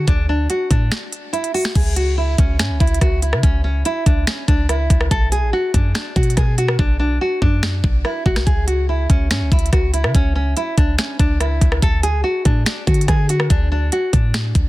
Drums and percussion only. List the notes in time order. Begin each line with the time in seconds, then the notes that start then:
0.08 kick, closed hi-hat
0.50 closed hi-hat
0.71 kick, closed hi-hat
0.92 finger snap, snare, closed hi-hat
1.12 closed hi-hat
1.33 closed hi-hat
1.44 closed hi-hat
1.54 open hi-hat
1.65 finger snap, snare
1.75 kick, closed hi-hat, crash
1.96 closed hi-hat
2.38 kick, closed hi-hat
2.59 finger snap, snare, closed hi-hat
2.80 kick, closed hi-hat
2.87 closed hi-hat
2.94 closed hi-hat
3.01 kick, cross-stick, closed hi-hat
3.22 closed hi-hat
3.33 cross-stick
3.43 kick, closed hi-hat
3.85 closed hi-hat
4.06 kick, closed hi-hat
4.27 finger snap, snare, closed hi-hat
4.48 kick, closed hi-hat
4.69 cross-stick, closed hi-hat
4.90 kick, closed hi-hat
5.01 cross-stick
5.11 kick, closed hi-hat
5.32 closed hi-hat
5.74 kick, closed hi-hat
5.95 finger snap, snare, closed hi-hat
6.16 kick, closed hi-hat
6.23 closed hi-hat
6.30 closed hi-hat
6.37 kick, cross-stick, closed hi-hat
6.58 closed hi-hat
6.68 cross-stick
6.79 kick
7.42 kick
7.63 finger snap, snare
7.84 kick
8.05 cross-stick
8.26 kick
8.36 finger snap, cross-stick, snare
8.47 kick, closed hi-hat
8.68 closed hi-hat
9.10 kick, closed hi-hat
9.31 finger snap, snare, closed hi-hat
9.52 kick, closed hi-hat
9.59 closed hi-hat
9.66 closed hi-hat
9.73 kick, cross-stick, closed hi-hat
9.94 closed hi-hat
10.04 cross-stick
10.15 kick, closed hi-hat
10.57 closed hi-hat
10.78 kick, closed hi-hat
10.98 finger snap, snare, closed hi-hat
11.19 kick, closed hi-hat
11.40 cross-stick, closed hi-hat
11.61 kick, closed hi-hat
11.72 cross-stick
11.82 kick, closed hi-hat
12.03 closed hi-hat
12.45 kick, closed hi-hat
12.66 finger snap, snare, closed hi-hat
12.87 kick, closed hi-hat
12.94 closed hi-hat
13.01 closed hi-hat
13.08 kick, cross-stick, closed hi-hat
13.29 closed hi-hat
13.40 cross-stick
13.50 kick, closed hi-hat
13.92 closed hi-hat
14.13 kick, closed hi-hat
14.34 finger snap, snare, closed hi-hat
14.55 kick, closed hi-hat